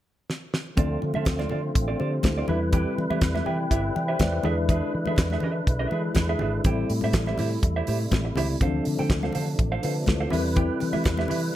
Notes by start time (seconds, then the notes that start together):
0.30 snare
0.54 snare
0.76 D2 D3 F3 A3 C4 D4 F4 A4 D5, kick, closed hi-hat, muted conga, low conga
1.02 D3, muted clean electric guitar stroke, muted conga
1.14 D3 C4 F4 A4 E5, high conga
1.25 D2, muted clean electric guitar stroke, kick, snare, closed hi-hat, muted conga
1.39 C4 F4 A4 D5, snare, high conga
1.49 D3 C4 F4 A4 D5, muted conga, low conga
1.63 muted clean electric guitar stroke
1.75 A1, muted clean electric guitar stroke, kick, closed hi-hat
1.88 C4 F4 A4 D5
1.99 D3 C4 F4 G4 A4 C5 D5, muted conga
2.13 muted clean electric guitar stroke
2.23 D2 E4 A4, muted clean electric guitar stroke, kick, snare, closed hi-hat, muted conga, high conga
2.38 C4 F4 A4 D5
2.47 E2 C3 G3 C4 D4 E4 G4 B4 E5, muted conga, low conga
2.55 E4
2.62 muted clean electric guitar stroke
2.73 E4 G4 B4 G5, kick, closed hi-hat, muted conga, low conga
2.97 E3, muted clean electric guitar stroke, muted conga
3.10 E3 E4 G4 B4 E5, high conga
3.21 E2, kick, snare, closed hi-hat
3.35 E4 G4 B4 E5, snare, high conga
3.46 E3 E4 G4 B4 E5 G5, low conga
3.60 muted clean electric guitar stroke
3.71 G1 E4 G4 B4 E5, kick, closed hi-hat, muted conga
3.84 muted clean electric guitar stroke
3.95 E3 D5 G5, muted clean electric guitar stroke, muted conga
4.08 E4 G4 B4 C5 E5
4.19 E2 B4 D5 E5, muted clean electric guitar stroke, kick, snare, closed hi-hat, muted conga, high conga
4.32 muted clean electric guitar stroke
4.43 E2 D3 G#3 D4 E4 G#4 A4 B4 E5, muted conga, low conga
4.52 B4
4.57 muted clean electric guitar stroke
4.69 D4 G#4 B4 E5, kick, closed hi-hat, muted conga, low conga
4.94 E3, muted clean electric guitar stroke
5.05 E3 D4 G#4 B4 E5, high conga
5.16 E2, muted clean electric guitar stroke, kick, snare, closed hi-hat, muted conga
5.30 D4 G#4 B4 E5, snare, high conga
5.40 E3 D4 G#4 B4 E5, muted conga, low conga
5.56 muted clean electric guitar stroke
5.67 B1, muted clean electric guitar stroke, kick, closed hi-hat
5.79 D4 G#4 B4 E5
5.91 E3 G#3 D4 E4 G#4 B4 E5, muted conga
6.04 muted clean electric guitar stroke
6.15 E2, muted clean electric guitar stroke, kick, snare, closed hi-hat, high conga
6.29 D4 G#4 B4 E5
6.39 G#1 D4 G#4 B4 E5, low conga
6.54 muted clean electric guitar stroke
6.63 A1 C3 G3 A3 C4 E4 G4 A4 C5 G5, kick, closed hi-hat, muted conga, low conga
6.90 A2, muted clean electric guitar stroke, open hi-hat
7.01 A2 E4 G4 C5 E5, high conga
7.13 A1, kick, snare, closed hi-hat, muted conga
7.26 E4 G4 C5 E5, snare, high conga
7.38 A2 E4 G4 C5 E5, open hi-hat, muted conga, low conga
7.51 muted clean electric guitar stroke
7.63 E2, muted clean electric guitar stroke, kick, closed hi-hat, muted conga
7.76 E4 G4 C5 E5
7.87 A2 E4 G4 C5 E5, open hi-hat, high conga
8.00 muted clean electric guitar stroke
8.11 A1, muted clean electric guitar stroke, kick, snare, closed hi-hat, muted conga, high conga
8.25 muted clean electric guitar stroke
8.36 C#2 E4 G4 C5 E5, open hi-hat, muted conga, low conga
8.49 muted clean electric guitar stroke
8.60 D2 F3 C4 D4 A4 C5 F5, kick, closed hi-hat, low conga
8.85 D3, muted clean electric guitar stroke, open hi-hat
8.99 D3 D4 A4 C5 G5, high conga
9.10 D2, muted clean electric guitar stroke, kick, snare, closed hi-hat
9.23 D4 A4 C5 F5, snare, high conga
9.32 D3 D4 A4 C5 F5, open hi-hat, muted conga, low conga
9.48 muted clean electric guitar stroke
9.59 A1, muted clean electric guitar stroke, kick, closed hi-hat
9.72 D4 A4 C5 F5
9.83 D3 D4 F4 A4 B4 C5 F5, open hi-hat, muted conga
9.96 muted clean electric guitar stroke
10.06 D2 E4 A4, muted clean electric guitar stroke, kick, snare, closed hi-hat, high conga
10.20 D4 A4 C5 F5
10.30 E2 G3 C4 E4 G4 A#4 B4 E5, open hi-hat, low conga
10.40 B4
10.44 muted clean electric guitar stroke
10.56 E4 G4 B4 G5, kick, closed hi-hat, low conga
10.80 E3, muted clean electric guitar stroke, open hi-hat, muted conga
10.93 E3 E4 G4 B4 E5, high conga
11.04 E2, kick, snare, closed hi-hat, muted conga
11.17 E4 G4 B4 E5, snare, high conga
11.28 E3 E4 G4 B4 E5, open hi-hat, muted conga, low conga
11.43 muted clean electric guitar stroke